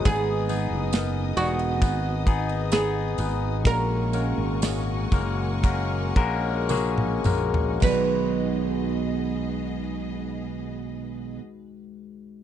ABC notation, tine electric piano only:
X:1
M:4/4
L:1/8
Q:1/4=58
K:F#mix
V:1 name="Tine electric piano"
[B,DG] [B,DG] [B,DA] [B,DG] [B,DB] [B,DG] [B,DG] [B,DB] | [G,A,CFA] [G,A,CFA] [G,A,CFG] [G,A,CFA] [G,A,CFA] [G,A,CFA] [G,A,CFG] [G,A,CFA] | [G,DFB]8 |]
V:2 name="Tine electric piano" clef=bass
z8 | A,,3 z4 z | B,,,8 |]